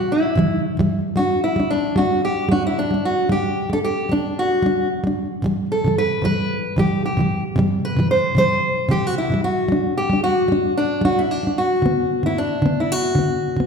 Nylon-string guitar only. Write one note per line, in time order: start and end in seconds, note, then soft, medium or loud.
0.35 0.58 C3 medium
0.35 0.59 E3 medium
0.35 0.59 G3 medium
0.77 0.98 C3 soft
0.77 0.99 E3 soft
0.77 1.00 G3 medium
1.16 1.38 G3 soft
1.16 1.40 D4 medium
1.56 1.78 G3 soft
1.56 1.79 D4 soft
1.96 2.18 G3 soft
1.96 2.20 D4 soft
2.49 2.71 G3 soft
2.49 2.73 D4 medium
2.91 3.12 G3 soft
2.91 3.13 D4 soft
3.29 3.51 G3 soft
3.29 3.53 D4 soft
3.70 3.91 G3 soft
3.70 3.93 D4 soft
4.09 4.31 G3 soft
4.09 4.33 D4 medium
4.63 4.85 G3 medium
4.63 4.87 D4 medium
5.04 5.25 G3 soft
5.04 5.27 D4 soft
5.42 5.65 C3 medium
5.42 5.66 E3 medium
5.42 5.66 G3 medium
5.84 6.05 C3 soft
5.84 6.06 E3 soft
5.84 6.07 G3 soft
6.22 6.44 C3 soft
6.22 6.45 E3 soft
6.22 6.46 G3 medium
6.76 6.98 C3 soft
6.76 6.99 E3 medium
6.76 7.00 G3 medium
7.17 7.38 C3 soft
7.17 7.39 E3 soft
7.17 7.40 G3 soft
7.56 7.78 C3 medium
7.56 7.79 E3 medium
7.56 7.80 G3 medium
7.96 8.18 C3 soft
7.96 8.19 E3 soft
7.96 8.20 G3 soft
8.35 8.58 C3 soft
8.35 8.58 E3 medium
8.35 8.59 G3 soft
8.89 9.11 C3 medium
8.89 9.12 E3 soft
8.89 9.13 G3 medium
9.30 9.51 C3 soft
9.30 9.52 E3 soft
9.30 9.53 G3 soft
9.69 9.91 G3 medium
9.69 9.93 D4 medium
10.10 10.31 G3 soft
10.10 10.33 D4 soft
10.48 10.71 G3 soft
10.48 10.73 D4 medium
11.01 11.24 G3 medium
11.01 11.26 D4 medium
11.43 11.65 G3 soft
11.43 11.67 D4 soft
11.82 12.05 D3 soft
11.82 12.06 B3 medium
12.23 12.45 D3 soft
12.23 12.47 B3 soft
12.62 12.84 D3 medium
12.62 12.86 B3 soft
13.15 13.38 D3 soft
13.15 13.40 B3 medium
13.56 13.66 D3 soft
13.56 13.66 B3 soft